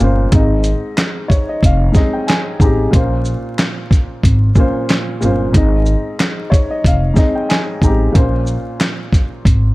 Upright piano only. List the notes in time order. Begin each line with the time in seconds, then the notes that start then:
Already playing: F4 C5
0.00 A#2 A#3 C#4 F4 C5
0.31 G#2 G#3 C4 D#4
0.36 D#5
1.28 C#5
1.49 D#5
1.65 F5
1.92 G#2 G#3 C4 D#4
1.96 D#5
2.13 G5
2.27 G#5
2.59 G#2 G#3 C4 D#4 A#5
2.64 G4
2.90 A#2 A#3 C#4 F4
2.95 C5
4.55 A#2 A#3 C#4 F4
4.60 C5
5.21 A#2 A#3 C#4 F4
5.25 C5
5.53 G#2 G#3 C4 D#4
5.57 D#5
6.50 C#5
6.70 D#5
6.87 F5
7.14 G#2 G#3 C4 D#4
7.18 D#5
7.35 G5
7.49 G#5
7.81 G#2 G#3 C4 D#4 A#5
7.86 G4
8.12 A#2 A#3 C#4 F4
8.17 C5